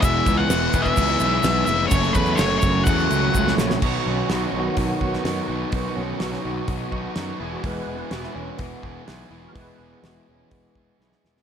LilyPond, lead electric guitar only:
\new Staff \with { instrumentName = "Lead electric guitar" } { \time 4/4 \key b \mixolydian \tempo 4 = 126 e''8. fis''4 e''4.~ e''16 e''8 | cis''8 b'8 cis''8 cis''8 fis''4. r8 | r1 | r1 |
r1 | r1 | }